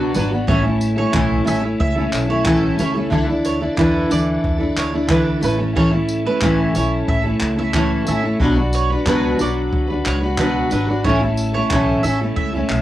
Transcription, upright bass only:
0.16 G#1
0.48 A1
1.14 B1
1.48 A1
1.80 C#2
2.14 B1
2.80 C#2
3.12 D2
3.78 E2
4.12 D2
4.44 E2
4.77 D2
5.43 A1
6.42 A1
6.76 B1
7.08 A1
7.42 C#2
8.08 A1
8.40 B1
9.06 C#2
9.41 B1
9.73 D2
10.06 C#2
10.72 G#1
11.05 A1
11.71 B1
12.04 A1
12.37 C#2
12.70 B1

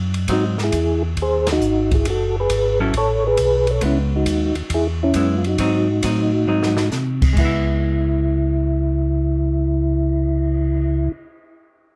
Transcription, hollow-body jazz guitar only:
0.29 F#3 C4 D#4
2.80 F#3 C#4 E4 A4
3.81 G#3 B3
5.15 G#3 B3 E4
5.59 F#3 C4 D#4
6.03 F#3 C4 D#4
6.47 F#3 C4 D#4
7.33 G#3
7.40 B3
7.45 E4

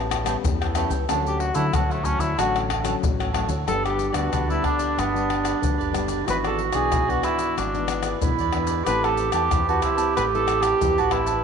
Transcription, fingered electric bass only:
Already playing: A1
0.44 E2
0.90 C#2
1.09 D2
1.55 D3
1.73 D2
2.19 D2
2.38 A1
3.03 A1
3.48 D2
3.67 G1
4.14 D2
4.33 D2
4.98 G1
5.63 D2
5.80 F#1
6.28 G#1
6.74 B1
6.93 B1
7.58 G#1
8.23 B1
8.40 E2
8.88 A1
9.33 E2
9.52 E2
10.17 A1
10.82 E2
11.00 A1

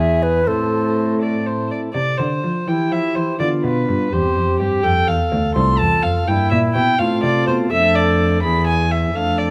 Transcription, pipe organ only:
Already playing: E2 B3 E4 G#4
0.44 C4 E4 A4
0.48 A2
1.95 C3
2.19 D3
2.42 F3
2.67 E3 E4 G4
2.91 F3
3.15 E3
3.39 D3 B3 D4 F4
3.63 B2
3.87 G2
4.12 E2 C4 G4
4.36 F2
4.60 G2
4.83 F2
5.07 E2
5.32 D2
5.55 C2 A3 C4 F4
5.80 E2
6.03 F2
6.27 G2 A#3 E4
6.52 A#2
6.75 B2
6.99 A2 A3 C4 A4
7.23 C3
7.46 B2
7.70 F2 A3 D4 A4
8.43 E2 B3 E4 G#4
9.14 F2 A3 D4 A4

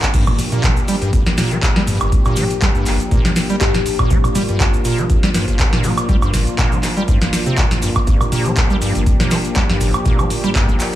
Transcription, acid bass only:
0.14 G2
0.27 G1
0.52 A#2
0.63 G3
0.88 G3
1.02 G2
1.13 G1
1.38 A#2
1.51 G3
1.76 G3
1.87 G2
2.01 G1
2.26 A#2
2.37 G3
2.62 G3
2.75 G2
2.87 G1
3.11 A#2
3.25 G3
3.50 G3
3.61 G2
3.74 G1
3.99 A#2
4.10 G3
4.35 G3
4.49 G2
4.60 G1
4.85 A#2
4.98 G3
5.23 G3
5.35 G2
5.48 G1
5.73 A#2
5.84 G3
6.09 G3
6.22 G2
6.34 G1
6.59 A#2
6.72 G3
6.97 G3
7.08 G2
7.22 G1
7.46 C3
7.58 A#2
7.82 G2
7.96 G2
8.07 G1
8.32 A#2
8.45 G3
8.70 G3
8.82 G2
8.95 G1
9.20 A#2
9.31 G3
9.56 G3
9.70 G2
9.81 G1
10.06 A#2
10.19 G3
10.44 G3
10.55 G2
10.69 G1

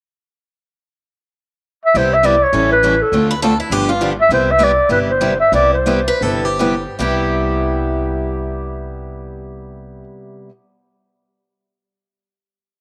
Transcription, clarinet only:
1.85 E5
1.97 C5
2.14 E5
2.26 D5
2.43 C#5
2.72 B4
3.02 A4
4.21 E5
4.33 C5
4.51 E5
4.63 D5
4.92 B4
5.10 C5
5.40 E5
5.54 D5
5.74 C5

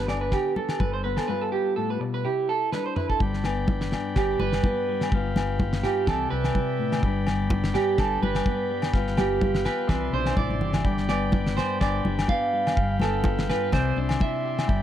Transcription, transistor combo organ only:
3.21 D5 G5 B5
5.13 F5 G5
6.10 D5 E5 G5
7.03 G5 B5
8.93 F5 G5
9.87 D5 E5 C6
10.84 G5 B5
12.76 F5
13.72 D5 E5 C6
14.67 G5 B5

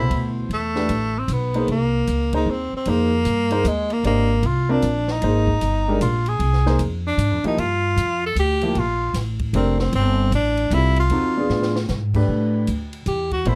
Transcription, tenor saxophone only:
Already playing: E4
0.54 A3
1.19 C4
1.33 B3
1.71 A#3
2.36 D#4
2.51 C4
2.77 C4
2.89 A#3
3.68 G#3
3.93 A#3
4.06 A#3
4.46 F4
4.71 D4
5.11 D#4
6.02 F4
6.28 G#4
7.07 D4
7.47 D#4
7.60 F4
8.26 A4
8.39 G4
8.79 F4
9.55 C4
9.80 C4
9.95 C4
10.35 D4
10.74 E4
11.00 F4
13.08 G4
13.33 F#4
13.48 E4

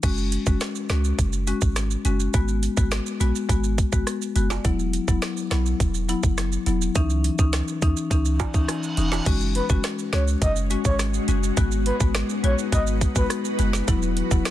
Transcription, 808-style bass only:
0.03 F#1
0.47 F#1
0.90 C#2
1.19 F#1
1.62 G#1
2.05 F#1
2.34 G#1
2.77 G#1
3.20 A#1
3.49 G#1
3.93 G#1
4.36 F#1
4.65 E1
5.08 E1
5.51 B1
5.80 E1
6.23 F#1
6.67 E1
6.96 C#2
7.39 C#2
7.82 D#2
8.11 C#2
8.54 C#2
8.98 E1
9.26 F#1
9.70 F#1
10.13 C#2
10.42 F#1
10.85 G#1
11.28 F#1
11.57 G#1
12.01 G#1
12.44 A#1
12.72 G#1
13.16 G#1
13.59 F#1
13.88 E1
14.31 E1

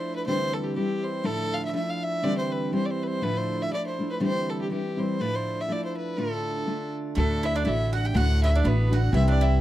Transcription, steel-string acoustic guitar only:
Already playing: F3 A3 D4 E4
0.27 D2 D3 E3 G3 C4 E4
0.75 E3 G3 C4 E4
1.23 D2 A2 F3 A3 D4 E4
1.73 F3 A3 D4 E4
2.22 D2 D3 E3 G3 C4 E4
2.71 E3 G3 C4 E4
3.22 D2 A2 F3 A3 D4 E4
3.71 F3 A3 D4 E4
3.98 F3 A3 D4 E4
4.20 D2 D3 E3 G3 C4 E4
4.70 E3 G3 C4 E4
4.97 E3 G3 C4 E4
5.19 D2 A2 F3 A3 D4 E4
5.68 F3 A3 D4 E4
6.18 D2 A2 D3 A3 D4 F4
6.66 D3 A3 D4 F4
7.16 D2 A2 D3 A3 D4 F#4
7.65 D3 A3 D4 F#4
8.14 D2 A2 D3 A3 D4 F#4
8.63 D3 A3 D4 F#4
8.90 D3 A3 D4 F#4
9.12 C3 E3 G3 C4 G4

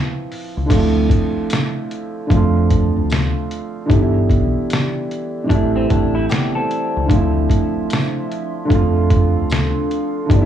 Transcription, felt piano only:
Already playing: F3 C4 E4 B4 G5
0.66 D3 F3
0.71 A3 C4
0.76 E4
2.27 D3 F3
2.32 A3 C4
2.37 F4
3.86 D3 E3
3.90 G3 B3
3.95 D#4
4.02 E4
5.44 C3 E3
5.49 G3 A3
5.54 E4
7.06 D3 F3
7.11 A3 C4
7.15 E4
8.65 D3 F3
8.70 A3 C4
8.75 F4
10.26 D3 E3
10.31 G3 B3
10.35 D4
10.42 E4

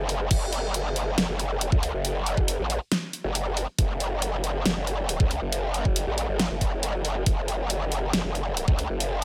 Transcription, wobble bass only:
Already playing: F#1
0.31 F#1
1.18 F#1
1.29 F#1
1.72 C#2
1.94 F#1
2.59 A1
3.24 F#1
3.79 F#1
4.65 F#1
4.76 F#1
5.20 C#2
5.42 F#1
6.07 A1
6.29 G1
6.50 F#1
7.26 F#1
8.13 F#1
8.24 F#1
8.68 C#2
8.90 F#1

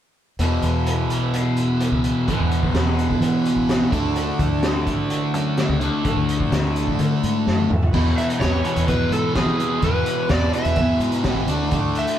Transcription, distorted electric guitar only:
0.39 E2 B2 E3
2.27 E2 B2 E3
3.91 D3 A3 D4
5.80 D3 A3 D4
7.93 E2 B2 E3
8.40 E2 B2 E3
8.63 B2 E3
8.87 E2 B2 E3
9.35 E2 B2 E3
9.58 B2 E3
9.81 E2 B2 E3
10.29 E2 B2 E3
10.53 B2 E3
10.78 E2 B2 E3
11.25 E2 B2 E3
11.48 D3 A3 D4
11.71 D3 A3 D4

